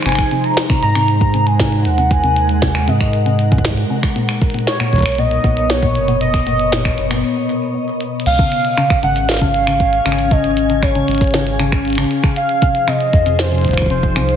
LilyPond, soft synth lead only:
\new Staff \with { instrumentName = "Soft synth lead" } { \time 4/4 \key des \major \tempo 4 = 117 aes''8. bes''8. bes''4~ bes''16 aes''8. ges''8 | aes''4. ees''2 r8 | r4 des''4 ees''4 des''4 | ees''2 r2 |
f''4. ges''8 f''2 | ees''4 des''2 r4 | f''4 ees''4 c''4 c''4 | }